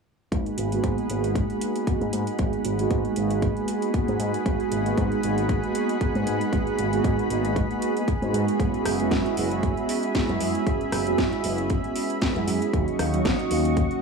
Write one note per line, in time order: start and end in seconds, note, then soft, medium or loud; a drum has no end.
0.32 0.43 G#1 medium
0.32 0.69 G#3 medium
0.32 0.69 A#3 medium
0.32 0.69 B3 medium
0.32 0.69 D#4 medium
0.32 0.69 F#4 medium
0.32 12.69 G#4 medium
0.32 8.56 F#5 medium
0.32 12.69 B5 medium
0.32 kick loud
0.32 closed hi-hat medium
0.46 closed hi-hat soft
0.58 0.78 G#1 medium
0.58 closed hi-hat medium
0.72 1.07 G#3 medium
0.72 1.07 A#3 medium
0.72 1.07 B3 medium
0.72 1.07 D#4 medium
0.72 1.07 F#4 loud
0.72 closed hi-hat soft
0.84 0.95 G#2 medium
0.84 kick loud
0.84 closed hi-hat medium
0.98 closed hi-hat soft
1.09 1.44 G#1 medium
1.09 1.46 G#3 medium
1.09 1.46 A#3 medium
1.09 1.47 B3 medium
1.09 1.47 D#4 medium
1.09 1.47 F#4 loud
1.09 closed hi-hat medium
1.24 closed hi-hat soft
1.35 kick loud
1.35 closed hi-hat soft
1.50 1.84 G#3 medium
1.50 1.85 A#3 medium
1.50 1.85 B3 medium
1.50 1.85 D#4 medium
1.50 1.85 F#4 medium
1.50 closed hi-hat soft
1.61 closed hi-hat medium
1.76 closed hi-hat soft
1.87 2.36 G#3 medium
1.87 2.36 A#3 medium
1.87 2.36 B3 medium
1.87 2.36 D#4 medium
1.87 2.36 F#4 medium
1.87 kick loud
1.87 closed hi-hat medium
2.01 2.10 G#2 medium
2.01 closed hi-hat soft
2.13 2.24 G#2 medium
2.13 closed hi-hat medium
2.27 closed hi-hat soft
2.38 2.50 G#1 medium
2.38 2.75 G#3 medium
2.38 2.75 A#3 medium
2.38 2.76 B3 medium
2.38 2.76 D#4 medium
2.38 2.76 F#4 medium
2.38 kick loud
2.38 closed hi-hat soft
2.53 closed hi-hat soft
2.65 2.85 G#1 medium
2.65 closed hi-hat medium
2.79 3.14 G#3 medium
2.79 3.14 A#3 medium
2.79 3.14 B3 medium
2.79 3.14 D#4 medium
2.79 3.14 F#4 loud
2.79 closed hi-hat soft
2.91 3.01 G#2 medium
2.91 kick loud
2.91 closed hi-hat soft
3.05 closed hi-hat soft
3.16 3.51 G#1 medium
3.16 3.53 G#3 medium
3.16 3.53 A#3 medium
3.16 3.53 B3 medium
3.16 3.54 D#4 medium
3.16 3.54 F#4 loud
3.16 closed hi-hat medium
3.30 closed hi-hat soft
3.42 kick loud
3.42 closed hi-hat soft
3.56 3.91 G#3 medium
3.56 3.91 A#3 medium
3.56 3.91 B3 medium
3.56 3.91 D#4 medium
3.56 3.92 F#4 medium
3.56 closed hi-hat soft
3.68 closed hi-hat medium
3.82 closed hi-hat soft
3.93 4.43 G#3 medium
3.93 4.43 A#3 medium
3.93 4.43 B3 medium
3.93 4.43 D#4 medium
3.93 4.43 F#4 medium
3.93 kick loud
3.93 closed hi-hat soft
4.08 4.17 G#2 medium
4.08 closed hi-hat soft
4.20 4.31 G#2 medium
4.20 closed hi-hat medium
4.34 closed hi-hat soft
4.45 4.56 G#1 medium
4.45 4.82 G#3 medium
4.45 4.82 A#3 medium
4.45 4.82 B3 medium
4.45 4.83 D#4 medium
4.45 kick loud
4.45 closed hi-hat soft
4.60 closed hi-hat soft
4.72 4.92 G#1 medium
4.72 closed hi-hat medium
4.85 5.20 G#3 loud
4.85 5.20 A#3 medium
4.85 5.20 B3 medium
4.85 5.21 D#4 medium
4.85 5.21 F#4 loud
4.85 closed hi-hat soft
4.98 5.08 G#2 loud
4.98 kick loud
4.98 closed hi-hat soft
5.12 closed hi-hat soft
5.23 5.58 G#1 medium
5.23 5.60 G#3 medium
5.23 5.60 A#3 medium
5.23 5.60 B3 medium
5.23 5.60 D#4 medium
5.23 5.60 F#4 loud
5.23 closed hi-hat medium
5.38 closed hi-hat soft
5.49 kick loud
5.49 closed hi-hat soft
5.63 5.98 G#3 medium
5.63 5.98 A#3 medium
5.63 5.98 B3 medium
5.63 5.98 D#4 medium
5.63 5.99 F#4 medium
5.63 closed hi-hat soft
5.75 closed hi-hat medium
5.89 closed hi-hat soft
6.00 6.50 G#3 medium
6.00 6.50 A#3 medium
6.00 6.50 B3 medium
6.00 6.50 D#4 medium
6.00 6.50 F#4 medium
6.00 kick loud
6.00 closed hi-hat soft
6.15 6.24 G#2 medium
6.15 closed hi-hat soft
6.27 6.38 G#2 medium
6.27 closed hi-hat medium
6.41 closed hi-hat soft
6.52 6.63 G#1 medium
6.52 6.89 G#3 medium
6.52 6.89 A#3 medium
6.52 6.90 B3 medium
6.52 6.90 D#4 medium
6.52 6.90 F#4 medium
6.52 kick loud
6.52 closed hi-hat soft
6.67 closed hi-hat soft
6.79 6.99 G#1 medium
6.79 closed hi-hat medium
6.92 7.27 G#3 loud
6.92 7.27 A#3 medium
6.92 7.27 B3 medium
6.92 7.28 D#4 medium
6.92 7.28 F#4 loud
6.92 closed hi-hat soft
7.04 7.15 G#2 medium
7.04 kick loud
7.04 closed hi-hat soft
7.19 closed hi-hat soft
7.30 7.65 G#1 medium
7.30 7.67 G#3 medium
7.30 7.67 A#3 medium
7.30 7.67 B3 medium
7.30 7.67 D#4 medium
7.30 7.67 F#4 loud
7.30 closed hi-hat medium
7.45 closed hi-hat soft
7.56 kick loud
7.56 closed hi-hat soft
7.70 7.93 G#3 medium
7.70 7.93 A#3 medium
7.70 7.94 B3 medium
7.70 7.94 D#4 medium
7.70 7.94 F#4 medium
7.70 closed hi-hat soft
7.82 closed hi-hat medium
7.96 8.04 G#3 medium
7.96 8.04 A#3 medium
7.96 8.04 B3 medium
7.96 8.04 D#4 medium
7.96 8.05 G#4 loud
7.96 closed hi-hat soft
8.08 kick loud
8.08 closed hi-hat soft
8.22 8.31 G#2 medium
8.22 8.57 G#3 medium
8.22 8.57 A#3 medium
8.22 8.57 B3 medium
8.22 8.57 D#4 medium
8.22 8.57 F#4 medium
8.22 closed hi-hat soft
8.33 8.44 G#2 medium
8.33 closed hi-hat medium
8.48 closed hi-hat soft
8.59 8.70 F#1 medium
8.59 8.96 G#3 medium
8.59 8.96 B3 medium
8.59 8.97 C#4 medium
8.59 8.97 E4 medium
8.59 8.97 F#4 medium
8.59 12.69 E5 medium
8.59 kick loud
8.59 closed hi-hat soft
8.74 closed hi-hat soft
8.85 9.06 F#1 medium
8.85 cross-stick medium
8.85 open hi-hat medium
8.99 9.34 G#3 medium
8.99 9.34 B3 medium
8.99 9.34 C#4 medium
8.99 9.35 E4 medium
8.99 9.35 F#4 loud
8.99 closed hi-hat soft
9.11 9.22 F#2 loud
9.11 kick loud
9.11 snare loud
9.11 closed hi-hat soft
9.26 closed hi-hat soft
9.37 9.72 F#1 medium
9.37 9.74 G#3 medium
9.37 9.74 B3 medium
9.37 9.74 C#4 medium
9.37 9.74 E4 medium
9.37 9.74 F#4 loud
9.37 open hi-hat medium
9.51 closed hi-hat soft
9.63 kick loud
9.63 closed hi-hat soft
9.77 10.12 G#3 medium
9.77 10.12 B3 medium
9.77 10.12 C#4 medium
9.77 10.12 E4 medium
9.77 10.12 F#4 medium
9.77 closed hi-hat soft
9.89 open hi-hat loud
10.03 closed hi-hat soft
10.14 10.63 G#3 medium
10.14 10.64 B3 medium
10.14 10.64 C#4 medium
10.14 10.64 E4 medium
10.14 10.64 F#4 medium
10.14 kick loud
10.14 snare loud
10.14 closed hi-hat soft
10.29 10.38 F#2 medium
10.29 closed hi-hat soft
10.40 10.52 F#2 medium
10.40 open hi-hat loud
10.55 closed hi-hat soft
10.66 10.77 F#1 medium
10.66 11.03 G#3 medium
10.66 11.03 B3 medium
10.66 11.03 C#4 medium
10.66 11.03 E4 medium
10.66 11.03 F#4 medium
10.66 kick loud
10.66 closed hi-hat soft
10.81 closed hi-hat soft
10.92 11.12 F#1 medium
10.92 cross-stick medium
10.92 open hi-hat medium
11.06 11.41 G#3 loud
11.06 11.41 B3 medium
11.06 11.41 C#4 medium
11.06 11.41 E4 medium
11.06 11.41 F#4 loud
11.06 closed hi-hat soft
11.18 11.29 F#2 loud
11.18 kick loud
11.18 snare loud
11.18 closed hi-hat soft
11.33 closed hi-hat soft
11.43 11.79 F#1 medium
11.43 11.81 G#3 medium
11.43 11.81 B3 medium
11.43 11.81 C#4 medium
11.43 11.81 E4 medium
11.43 11.81 F#4 loud
11.43 open hi-hat medium
11.58 closed hi-hat soft
11.70 kick loud
11.70 closed hi-hat soft
11.84 12.19 G#3 medium
11.84 12.19 B3 medium
11.84 12.19 C#4 medium
11.84 12.19 E4 medium
11.84 12.19 F#4 medium
11.84 closed hi-hat soft
11.96 open hi-hat loud
12.10 closed hi-hat soft
12.21 12.70 G#3 medium
12.21 12.70 B3 medium
12.21 12.71 C#4 medium
12.21 12.71 E4 medium
12.21 12.71 F#4 medium
12.21 kick loud
12.21 snare loud
12.21 closed hi-hat soft
12.36 12.45 F#2 medium
12.36 closed hi-hat soft
12.47 12.58 F#2 medium
12.47 open hi-hat loud
12.62 closed hi-hat soft
12.73 12.84 D#2 medium
12.73 13.10 F#3 medium
12.73 13.10 A#3 medium
12.73 13.10 C#4 medium
12.73 13.10 D#4 medium
12.73 14.02 F#4 medium
12.73 13.10 F#4 medium
12.73 14.02 D#5 medium
12.73 14.02 C#6 medium
12.73 kick loud
12.73 closed hi-hat soft
12.88 closed hi-hat soft
12.99 13.19 D#2 medium
12.99 cross-stick medium
12.99 open hi-hat medium
13.13 13.48 F#3 loud
13.13 13.48 A#3 medium
13.13 13.48 C#4 medium
13.13 13.48 D#4 medium
13.13 13.48 F#4 loud
13.13 closed hi-hat soft
13.25 13.36 A#1 loud
13.25 kick loud
13.25 snare loud
13.25 closed hi-hat medium
13.39 closed hi-hat soft
13.50 13.85 D#2 medium
13.50 13.87 F#3 medium
13.50 13.88 A#3 medium
13.50 13.88 C#4 medium
13.50 13.88 D#4 medium
13.50 13.88 F#4 loud
13.50 open hi-hat medium
13.65 closed hi-hat soft
13.77 kick loud
13.77 closed hi-hat medium
13.90 14.02 F#3 medium
13.90 14.02 A#3 medium
13.90 14.02 C#4 medium
13.90 14.02 D#4 medium
13.90 14.02 F#4 medium
13.90 closed hi-hat soft